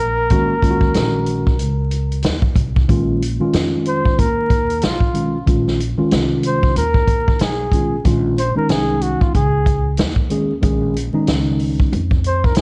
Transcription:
Already playing: upright bass A#1, flugelhorn A#4
0.30 upright bass D#2, tine electric piano D#3 G#3 C#4 F#4, kick, closed hi-hat
0.62 tine electric piano D#3 G#3 C#4 F4, kick, closed hi-hat
0.71 tine electric piano F#4
0.81 kick
0.94 upright bass A#1, snare, closed hi-hat
1.26 closed hi-hat
1.47 kick
1.59 upright bass C#2, closed hi-hat
1.91 closed hi-hat
2.12 closed hi-hat
2.22 upright bass D#2, snare, closed hi-hat
2.42 kick
2.56 upright bass C2, kick, closed hi-hat
2.76 kick
2.89 upright bass A#1, tine electric piano D#3 G#3 C#4 F4, kick, closed hi-hat
3.22 closed hi-hat
3.40 tine electric piano D#3 G#3 C#4 F4, muted upright bass stroke
3.53 upright bass F2, snare, closed hi-hat
3.86 flugelhorn C5, closed hi-hat
4.06 kick
4.18 upright bass D#2, flugelhorn A#4, kick, closed hi-hat
4.50 kick, closed hi-hat
4.70 closed hi-hat
4.81 upright bass B1, flugelhorn F4, snare, closed hi-hat
5.00 kick
5.14 tine electric piano D#3 G#3 C#4 F4, closed hi-hat
5.46 upright bass A#1, tine electric piano D#3 G#3 C#4 F4, kick, closed hi-hat
5.68 snare
5.80 closed hi-hat
5.98 tine electric piano D#3 G#3 C#4 F4, muted upright bass stroke
6.11 upright bass C2, snare, closed hi-hat
6.43 flugelhorn C5, closed hi-hat
6.63 kick
6.76 upright bass D#2, flugelhorn A#4, closed hi-hat
6.95 kick
7.08 kick, closed hi-hat
7.28 kick
7.39 upright bass B1, flugelhorn G#4, snare, closed hi-hat
7.72 tine electric piano D#3 G#3 C#4 F4, kick, closed hi-hat
8.05 upright bass A#1, tine electric piano D#3 G#3 C#4 F4, kick, closed hi-hat
8.38 flugelhorn C5, closed hi-hat
8.56 tine electric piano D#3 G#3 C#4 D#4, flugelhorn A#4, muted upright bass stroke
8.69 upright bass C2, flugelhorn G#4, snare, closed hi-hat
9.02 flugelhorn F#4, closed hi-hat
9.21 flugelhorn F4, muted upright bass stroke, kick
9.35 upright bass C#2, flugelhorn G#4, kick, closed hi-hat
9.66 kick, closed hi-hat
9.97 upright bass D#2, snare, closed hi-hat
10.16 kick
10.30 tine electric piano D#3 G#3 C#4 G#4, closed hi-hat
10.62 upright bass A#1, tine electric piano D#3 G#3 C#4 G#4, kick, closed hi-hat
10.96 closed hi-hat
11.13 tine electric piano D#3 G#3 C#4 D#4, muted upright bass stroke
11.27 upright bass C#2, snare, closed hi-hat
11.59 open hi-hat
11.79 muted upright bass stroke, kick
11.92 upright bass F2, closed hi-hat
12.11 kick
12.24 flugelhorn C5, closed hi-hat
12.44 flugelhorn A#4, kick
12.55 upright bass E2, snare, closed hi-hat

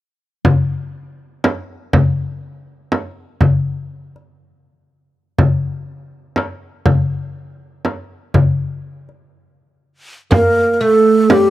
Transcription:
0.45 frame drum, darbuka dum
1.44 darbuka tek, frame drum
1.93 darbuka dum, frame drum
2.92 darbuka tek, frame drum
3.41 frame drum, darbuka dum
4.16 darbuka ka
5.39 frame drum, darbuka dum
6.36 darbuka tek, frame drum
6.86 frame drum, darbuka dum
7.85 darbuka tek, frame drum
8.34 frame drum, darbuka dum
9.09 darbuka ka
10.31 oud A#3, ney A#4, frame drum
10.74 ney A#4
10.81 oud A3, ney A4
11.30 oud G3, ney G4, frame drum

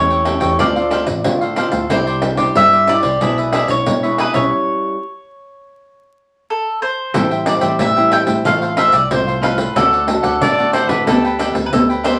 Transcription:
Already playing: fingered electric bass E2, nylon-string guitar E3 A3 C#4 G4, mandolin C#5
0.10 cavaquinho A4 C#5 G5, pandeiro
0.25 nylon-string guitar A3 C#4 G4, cavaquinho E4 A4 C#5 G5, pandeiro
0.40 fingered electric bass E2, cavaquinho A4 C#5 G5, pandeiro
0.59 fingered electric bass D2, nylon-string guitar D3 A3 C4 F4, cavaquinho D4 A4 C5 F5, mandolin D5, pandeiro
0.76 nylon-string guitar A3 C4 F4, cavaquinho A4 C5 F5, pandeiro
0.90 cavaquinho D4 A4 C5 F5, pandeiro
1.06 fingered electric bass A1, muted cavaquinho stroke, pandeiro
1.24 nylon-string guitar A2 A3 C4 F4, fingered electric bass D3, pandeiro
1.41 cavaquinho A4 C5 F5, pandeiro
1.56 nylon-string guitar A3 C4 F4, cavaquinho D4 A4 C5 F5, pandeiro
1.72 fingered electric bass D2, cavaquinho A4 C5 F5, pandeiro
1.89 fingered electric bass C2, nylon-string guitar C3 G3 D4 E4, cavaquinho E4 G4 C5 D5, mandolin C5, pandeiro
2.07 cavaquinho G4 C5 D5, pandeiro
2.22 muted cavaquinho stroke, pandeiro
2.37 nylon-string guitar G3 D4 E4, cavaquinho G4 C5 D5, pandeiro
2.55 fingered electric bass G2, nylon-string guitar G3, mandolin E5, pandeiro
2.72 cavaquinho G4 C5 D5, pandeiro
2.87 nylon-string guitar G3 D4 E4, cavaquinho E4 G4 C5 D5, mandolin D5, pandeiro
3.03 fingered electric bass C2, cavaquinho G4 C5 D5, pandeiro
3.21 fingered electric bass B1, nylon-string guitar B2 G#3 D4 E4, cavaquinho D4 G#4 B4 E5, pandeiro
3.38 cavaquinho G#4 B4 E5, pandeiro
3.53 cavaquinho D4 G#4 B4 E5, pandeiro
3.68 fingered electric bass B1, nylon-string guitar G#3 D4 E4, mandolin C#5, muted cavaquinho stroke, pandeiro
3.86 fingered electric bass B2, nylon-string guitar B2, pandeiro
4.03 nylon-string guitar G#3 D4 E4, cavaquinho G#4 B4 E5, pandeiro
4.18 cavaquinho D4 G#4 B4 E5, mandolin B4, pandeiro
4.33 fingered electric bass B1, nylon-string guitar G3 C#4 E4, cavaquinho G#4 B4 E5, mandolin C#5, pandeiro
6.50 mandolin A4
6.82 mandolin C5
7.14 fingered electric bass A1, nylon-string guitar A2 G3 C4 E4, cavaquinho A4 C5 E5 G5, pandeiro
7.31 cavaquinho C5 E5 G5, pandeiro
7.46 nylon-string guitar G3 C4 E4, mandolin D5, muted cavaquinho stroke, pandeiro
7.61 fingered electric bass A1, cavaquinho C5 E5 G5, pandeiro
7.79 fingered electric bass A2, nylon-string guitar E3, mandolin E5, pandeiro
7.96 nylon-string guitar G3 C4 E4, cavaquinho C5 E5 G5, pandeiro
8.11 cavaquinho A4 C5 E5 G5, mandolin G5, pandeiro
8.27 fingered electric bass A2, cavaquinho C5 E5 G5, pandeiro
8.45 fingered electric bass A1, nylon-string guitar A2 A3 C4 F4, cavaquinho F4 A4 C5 F5, mandolin F5, pandeiro
8.62 cavaquinho A4 C5 F5, pandeiro
8.77 nylon-string guitar A3 C4 F4, cavaquinho F4 A4 C5 F5, mandolin E5, pandeiro
8.92 fingered electric bass C2, mandolin D5, muted cavaquinho stroke, pandeiro
9.10 fingered electric bass C2, nylon-string guitar A2 A3 C4 F4, mandolin C5, pandeiro
9.27 cavaquinho A4 C5 F5, pandeiro
9.42 nylon-string guitar A3 C4 F4, cavaquinho F4 A4 C5 F5, mandolin B4, pandeiro
9.58 cavaquinho A4 C5 F5, pandeiro
9.76 fingered electric bass D2, nylon-string guitar D3 A3 D4 F#4, cavaquinho D4 A4 D5 F#5, mandolin A4, pandeiro
9.93 cavaquinho A4 D5 F#5, pandeiro
10.08 nylon-string guitar A3 D4 F#4, muted cavaquinho stroke, pandeiro
10.23 fingered electric bass D2, cavaquinho A4 D5 F#5, pandeiro
10.41 nylon-string guitar A2, fingered electric bass D3, trumpet D5, pandeiro
10.58 nylon-string guitar A3 D4 F#4, cavaquinho A4 D5 F#5, pandeiro
10.73 cavaquinho D4 A4 D5 F#5, trumpet C5, pandeiro
10.89 fingered electric bass D3, cavaquinho A4 D5 F#5, trumpet B4, pandeiro
11.07 fingered electric bass D2, nylon-string guitar D3 B3 G4 A4, cavaquinho D4 A4 B4 G5, trumpet A4, pandeiro
11.24 cavaquinho A4 B4 G5, pandeiro
11.39 cavaquinho D4 A4 B4 G5, pandeiro
11.54 fingered electric bass D2, muted cavaquinho stroke, pandeiro
11.66 mandolin B4
11.72 fingered electric bass D2, nylon-string guitar D3 B3 G4 A4, mandolin A4, pandeiro
11.89 cavaquinho A4 B4 G5, pandeiro
12.03 nylon-string guitar B3 G4 A4, cavaquinho D4 A4 B4 G5, mandolin C5, pandeiro

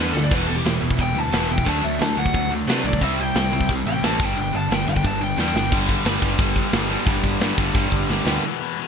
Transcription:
Already playing: picked electric bass E2, distorted electric guitar D4
0.00 distorted electric guitar G2 D3 G3 B3
0.11 picked electric bass D2, distorted electric guitar G2 D3, lead electric guitar A4
0.15 distorted electric guitar G3 B3 D4, snare
0.23 lead electric guitar D5
0.31 picked electric bass E1, overdriven electric guitar E2 B2, distorted electric guitar E3 G3 B3 E4, lead electric guitar B4, kick, open hi-hat, crash
0.47 overdriven electric guitar E2 B2, distorted electric guitar E3 G3 B3 E4, lead electric guitar A4
0.55 lead electric guitar G4
0.64 picked electric bass E1, overdriven electric guitar E2 B2, distorted electric guitar E3 G3 B3 E4, snare, open hi-hat
0.82 picked electric bass E1, overdriven electric guitar E2 B2, distorted electric guitar E3 G3 B3 E4
0.91 kick
0.98 picked electric bass E1, overdriven electric guitar E2 B2, distorted electric guitar E3 G3 B3 E4, lead electric guitar G5, kick, open hi-hat
1.15 picked electric bass D2, overdriven electric guitar E2 B2, distorted electric guitar E3 G3 B3 E4, lead electric guitar A5
1.32 picked electric bass E1, overdriven electric guitar E2 B2, distorted electric guitar E3 G3 B3 E4, snare, open hi-hat
1.48 picked electric bass E1, overdriven electric guitar E2 B2, distorted electric guitar E3 G3 B3 E4, lead electric guitar G5
1.58 kick
1.64 picked electric bass D2, distorted electric guitar D3 F#3 A3 D4, lead electric guitar A5, kick, open hi-hat
1.82 picked electric bass D2, distorted electric guitar D3 F#3 A3 D4, lead electric guitar E5
1.99 picked electric bass D2, distorted electric guitar D3 F#3 A3 D4, lead electric guitar A5, snare, open hi-hat
2.16 picked electric bass D2, distorted electric guitar D3 F#3 A3 D4, lead electric guitar F#5
2.26 kick
2.34 picked electric bass D2, distorted electric guitar D3 F#3 A3 D4, kick, open hi-hat
2.51 distorted electric guitar D3 F#3 A3 D4
2.68 picked electric bass C3, distorted electric guitar D3 F#3 A3 D4, lead electric guitar B4, snare, open hi-hat
2.84 picked electric bass B1, distorted electric guitar D3 F#3 A3 D4, lead electric guitar D5
2.93 kick
3.01 picked electric bass C2, distorted electric guitar C3 G3 C4 E4, lead electric guitar E5, kick, open hi-hat
3.21 distorted electric guitar C3 G3 C4 E4, lead electric guitar G5
3.35 picked electric bass C2, distorted electric guitar C3 G3 C4 E4, lead electric guitar G5, snare, open hi-hat
3.52 picked electric bass C2, distorted electric guitar C3 G3 C4 E4
3.61 kick
3.69 picked electric bass C2, distorted electric guitar C3 G3 C4 E4, kick, open hi-hat
3.85 picked electric bass A1, distorted electric guitar C3 G3 C4 E4, lead electric guitar G5
4.02 picked electric bass A1, distorted electric guitar C3 G3 C4 E4, lead electric guitar A5, snare, open hi-hat
4.18 picked electric bass G1, distorted electric guitar G2 D3 G3 B3 D4, kick
4.23 lead electric guitar G5
4.36 picked electric bass G1, distorted electric guitar G2 D3 G3 B3 D4, lead electric guitar G5, open hi-hat
4.52 picked electric bass G1, distorted electric guitar G2 D3 G3 B3 D4, lead electric guitar A5
4.69 picked electric bass G1, distorted electric guitar G2 D3 G3 B3 D4, lead electric guitar G5, snare, open hi-hat
4.87 picked electric bass G1, distorted electric guitar G2 D3 G3 B3 D4, lead electric guitar G5
4.96 kick
5.03 picked electric bass G1, distorted electric guitar G2 D3 G3 B3 D4, lead electric guitar A5, kick, open hi-hat
5.19 distorted electric guitar G2 D3 G3 B3 D4, lead electric guitar G5
5.37 picked electric bass E2, distorted electric guitar G2 D3 G3 B3 D4, lead electric guitar G5, snare
5.53 picked electric bass G1, distorted electric guitar G2 D3 G3 B3 D4, snare
5.71 picked electric bass G1, distorted electric guitar G2 D3 G3 B3 D4 G4, kick, crash
5.89 kick
6.05 picked electric bass G1, overdriven electric guitar G2 D3 G3, snare, open hi-hat
6.22 picked electric bass G1, overdriven electric guitar G2 D3 G3, kick
6.38 picked electric bass G1, overdriven electric guitar G2 D3 G3, kick, open hi-hat
6.56 kick
6.72 picked electric bass G1, overdriven electric guitar G2 D3 G3, snare, open hi-hat
6.90 distorted electric guitar G2 D3 G3 B3 D4 G4
7.06 picked electric bass G1, distorted electric guitar G2 D3 G3 B3 D4 G4, kick, open hi-hat
7.24 picked electric bass G1, kick
7.40 overdriven electric guitar G2 D3 G3, picked electric bass G2, snare, open hi-hat
7.57 picked electric bass G1, overdriven electric guitar G2 D3 G3, kick
7.74 overdriven electric guitar G2 D3 G3, picked electric bass G2, kick, open hi-hat
7.92 picked electric bass G1, kick
8.08 picked electric bass G1, overdriven electric guitar G2 D3 G3, snare
8.25 picked electric bass D2, distorted electric guitar G2 D3 G3 B3 D4 G4, snare
8.44 overdriven electric guitar E2 B2 E3
8.61 overdriven electric guitar E2 B2 E3
8.78 overdriven electric guitar E2 B2 E3

